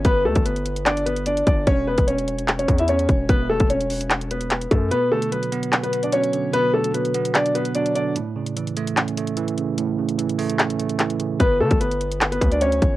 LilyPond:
<<
  \new Staff \with { instrumentName = "Grand piano" } { \time 4/4 \key b \minor \tempo 4 = 148 <b b'>8 <a a'>8 <b b'>4 <d' d''>8 <b b'>8 <d' d''>8 <d' d''>8 | <cis' cis''>8 <b b'>8 <cis' cis''>4~ <cis' cis''>16 <cis' cis''>8 <e' e''>16 <cis' cis''>4 | <b b'>8 <a a'>8 <cis' cis''>4. <b b'>4 <a a'>8 | <b b'>8 <a a'>8 <b b'>4~ <b b'>16 <b b'>8 <d' d''>16 <cis' cis''>4 |
<b b'>8 <a a'>8 <b b'>4 <d' d''>8 <b b'>8 <d' d''>8 <d' d''>8 | r1 | r1 | <b b'>8 <a a'>8 <b b'>4~ <b b'>16 <b b'>8 <d' d''>16 <cis' cis''>4 | }
  \new Staff \with { instrumentName = "Tine electric piano" } { \clef bass \time 4/4 \key b \minor r1 | r1 | r1 | b,8 d8 fis8 b8 fis'8 b8 fis8 d8 |
b,8 d8 fis8 b8 d'8 b8 fis8 d8 | a,8 cis8 e8 a8 cis'8 a8 e8 cis8 | a,8 cis8 e8 a8 cis'8 a8 e8 cis8 | r1 | }
  \new Staff \with { instrumentName = "808-style bass" } { \clef bass \time 4/4 \key b \minor g,,8 d,16 g,,2~ g,,8. g,,8 | e,,8. e,,4.~ e,,16 e,4 e,,8 | e,,8. e,,2~ e,,8. fis,8 | r1 |
r1 | r1 | r1 | g,,8 d16 g,,4.~ g,,16 d,4 g,,8 | }
  \new DrumStaff \with { instrumentName = "Drums" } \drummode { \time 4/4 <hh bd>8. <hh bd>16 hh16 hh16 hh16 hh16 <hc hh>16 hh16 hh16 hh16 hh16 hh16 <hh bd>8 | <hh bd>8. <hh bd>16 hh16 hh16 hh16 hh16 <hc hh>16 hh16 <hh bd>16 hh16 hh16 hh16 <hh bd>8 | <hh bd>8. <hh bd>16 hh16 hh16 <hh hho>16 hh16 <hc hh>16 hh16 hh16 hh16 <hc hh>16 hh16 <hh bd>8 | hh8. hh16 hh16 hh16 hh16 hh16 <hc hh>16 hh16 hh16 hh16 hh16 hh16 hh8 |
hh8. hh16 hh16 hh16 hh16 hh16 <hc hh>16 hh16 hh16 hh16 hh16 hh16 hh8 | hh8. hh16 hh16 hh16 hh16 hh16 <hc hh>16 hh16 hh16 hh16 hh16 hh16 hh8 | hh8. hh16 hh16 hh16 <hh hho>16 hh16 <hc hh>16 hh16 hh16 hh16 <hc hh>16 hh16 hh8 | <hh bd>8. <hh bd>16 hh16 hh16 hh16 hh16 <hc hh>16 hh16 <hh bd>16 hh16 hh16 hh16 <hh bd>8 | }
>>